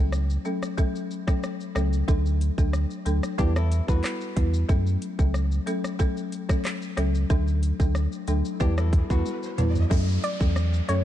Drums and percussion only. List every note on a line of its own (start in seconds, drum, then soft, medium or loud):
0.12 cross-stick medium
0.12 shaker medium
0.30 shaker medium
0.45 shaker medium
0.63 cross-stick medium
0.63 shaker medium
0.78 kick medium
0.78 shaker medium
0.96 shaker medium
1.11 shaker medium
1.28 kick medium
1.28 cross-stick loud
1.28 shaker medium
1.43 cross-stick medium
1.43 shaker medium
1.60 shaker medium
1.76 cross-stick loud
1.76 shaker medium
1.93 shaker medium
2.08 kick loud
2.08 shaker medium
2.26 shaker soft
2.41 closed hi-hat medium
2.41 shaker medium
2.58 kick medium
2.58 shaker medium
2.73 cross-stick medium
2.73 shaker medium
2.91 shaker medium
3.06 closed hi-hat medium
3.06 shaker medium
3.23 cross-stick medium
3.23 shaker medium
3.39 kick medium
3.39 shaker medium
3.56 cross-stick loud
3.56 shaker medium
3.72 closed hi-hat medium
3.72 shaker medium
3.88 kick medium
3.88 shaker medium
4.04 cross-stick medium
4.04 clap medium
4.04 shaker medium
4.21 shaker medium
4.37 kick medium
4.37 closed hi-hat medium
4.37 shaker medium
4.54 shaker medium
4.69 kick loud
4.69 shaker medium
4.87 shaker soft
5.02 closed hi-hat medium
5.02 shaker medium
5.19 kick medium
5.19 shaker medium
5.34 cross-stick medium
5.34 shaker medium
5.52 shaker medium
5.67 closed hi-hat medium
5.67 shaker medium
5.84 cross-stick medium
5.84 shaker medium
5.99 kick medium
5.99 shaker medium
6.17 shaker medium
6.32 closed hi-hat medium
6.32 shaker medium
6.49 kick medium
6.49 cross-stick loud
6.49 shaker medium
6.65 cross-stick medium
6.65 clap medium
6.65 shaker medium
6.82 shaker medium
6.97 cross-stick loud
6.97 closed hi-hat medium
6.97 shaker medium
7.15 shaker medium
7.30 kick loud
7.30 shaker medium
7.48 shaker soft
7.63 closed hi-hat medium
7.63 shaker medium
7.80 kick medium
7.80 shaker medium
7.95 cross-stick medium
7.95 shaker medium
8.12 shaker medium
8.28 closed hi-hat medium
8.28 shaker medium
8.45 shaker medium
8.60 kick medium
8.60 shaker medium
8.78 cross-stick loud
8.78 shaker medium
8.93 kick loud
8.93 closed hi-hat medium
8.93 shaker medium
9.10 kick medium
9.10 shaker medium
9.26 high tom medium
9.26 shaker medium
9.43 shaker medium
9.58 closed hi-hat medium
9.58 mid tom medium
9.58 shaker medium
9.75 floor tom medium
9.75 shaker medium
9.91 kick loud
9.91 crash loud
9.91 shaker medium
10.08 shaker soft
10.24 closed hi-hat medium
10.24 shaker medium
10.41 kick medium
10.41 shaker medium
10.56 cross-stick medium
10.56 shaker medium
10.74 shaker medium
10.89 closed hi-hat medium
10.89 shaker medium